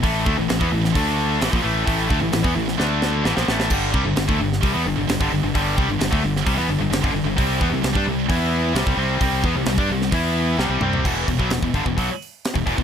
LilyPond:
<<
  \new Staff \with { instrumentName = "Distorted electric guitar" } { \clef bass \time 4/4 \key e \minor \tempo 4 = 131 <a, e a>8 <d a>16 <a, e>16 <a, e>16 <e b>16 <a, e>8 <d a d'>4 <a, e>16 <ais, f>16 <a, e a>8 | <a, e a>8 <d a>16 <a, e>16 <a, e>16 <e b>16 <a, e>8 <d a d'>4 <a, e>16 <ais, f>16 <a, e a>8 | <g, d g>8 <c g>16 <g, d>16 <g, d>16 <d a>16 <g, d>8 <c g>16 <e b>16 <g, d>16 <g, d>16 <g, d>16 <g, d>16 <g, d>16 <g, d>16 | <g, d g>8 <c g>16 <g, d>16 <g, d>16 <d a>16 <g, d>8 <c g>16 <e b>16 <g, d>16 <g, d>16 <g, d>16 <g, d>16 <g, d>16 <g, d>16 |
<c g c'>8 <e b>16 <c g>16 <c g>16 <g d'>16 <c g>8 <e b e'>4 <c g>16 <c g>16 <c g c'>8 | <c g c'>8 <e b>16 <c g>16 <c g>16 <g d'>16 <c g>8 <e b e'>4 <c g>16 <c g>16 <c g c'>8 | <e, b, e>8 <e, b,>16 <b, fis>16 <e, b,>16 <e, b,>16 <g, d>16 <e, b,>16 <b, fis>16 r4 <e, b,>16 <e, b,>16 <e, b,>16 | }
  \new Staff \with { instrumentName = "Distorted electric guitar" } { \clef bass \time 4/4 \key e \minor <a, e a>8 <d a>16 <a, e>16 <a, e>16 <e b>16 <a, e>8 <d a d'>4 <a, e>16 <ais, f>16 <a, e a>8 | <a, e a>8 <d a>16 <a, e>16 <a, e>16 <e b>16 <a, e>8 <d a d'>4 <a, e>16 <ais, f>16 <a, e a>8 | <g, d g>8 <c g>16 <g, d>16 <g, d>16 <d a>16 <g, d>8 <c g>16 <e b>16 <g, d>16 <g, d>16 <g, d>16 <g, d>16 <g, d>16 <g, d>16 | <g, d g>8 <c g>16 <g, d>16 <g, d>16 <d a>16 <g, d>8 <c g>16 <e b>16 <g, d>16 <g, d>16 <g, d>16 <g, d>16 <g, d>16 <g, d>16 |
<c g c'>8 <e b>16 <c g>16 <c g>16 <g d'>16 <c g>8 <e b e'>4 <c g>16 <c g>16 <c g c'>8 | <c g c'>8 <e b>16 <c g>16 <c g>16 <g d'>16 <c g>8 <e b e'>4 <c g>16 <c g>16 <c g c'>8 | <e, b, e>8 <e, b,>16 <b, fis>16 <e, b,>16 <e, b,>16 <g, d>16 <e, b,>16 <b, fis>16 r4 <e, b,>16 <e, b,>16 <e, b,>16 | }
  \new Staff \with { instrumentName = "Fingered electric bass" } { \clef bass \time 4/4 \key e \minor a,,8 d,16 a,,16 a,,16 e,16 a,,8 d,4 a,,16 ais,,16 a,,8 | a,,8 d,16 a,,16 a,,16 e,16 a,,8 d,4 a,,16 ais,,16 a,,8 | g,,8 c,16 g,,16 g,,16 d,16 g,,8 c,16 e,16 g,,16 g,,16 g,,16 g,,16 g,,16 g,,16 | g,,8 c,16 g,,16 g,,16 d,16 g,,8 c,16 e,16 g,,16 g,,16 g,,16 g,,16 g,,16 g,,16 |
c,8 e,16 c,16 c,16 g,16 c,8 e,4 c,16 c,16 c,8 | c,8 e,16 c,16 c,16 g,16 c,8 e,4 c,16 c,16 c,8 | e,,8 e,,16 b,,16 e,,16 e,,16 g,,16 e,,16 b,,16 r4 e,,16 e,,16 e,,16 | }
  \new DrumStaff \with { instrumentName = "Drums" } \drummode { \time 4/4 <hho bd>8 bd8 <hho sn>16 bd8 sn16 <hho bd>4 <hho sn>16 bd8. | <hho bd>8 bd8 <hho sn>16 bd8 sn16 sn8 sn8 sn16 sn16 sn16 sn16 | <cymc bd>8 bd8 <hho sn>16 bd8 sn16 <hho bd>4 <hho sn>16 bd8. | <hho bd>8 bd8 <hho sn>16 bd8 sn16 <hho bd>4 <hho sn>16 bd8. |
<hho bd>8 bd8 <hho sn>16 bd8. <hho bd>4 <hho sn>16 bd8. | <hho bd>8 bd8 <hho sn>16 bd8 sn16 <hho bd>4 sn8 toml16 tomfh16 | <cymc bd>8 <hho bd>16 bd16 <hho sn>16 bd16 <hho bd>16 bd16 <hho bd>8 hho8 <hho sn>16 bd16 <hho bd>16 bd16 | }
>>